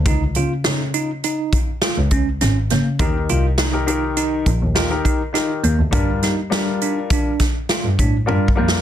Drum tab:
HH |x--x--x--x--x--x--x--x--x--x--|x--x--x--x--x--x--x--x--x--x--|x--x--x--x--x--x--x--x--------|
SD |------o-----------o-----o--o--|------o-----------o-----o-----|---o--o--------o--o---------o-|
T1 |------------------------------|------------------------------|------------------------o-----|
BD |o--------------o-----o--------|o--------------o-----o--------|o-----------o--o-----o----o---|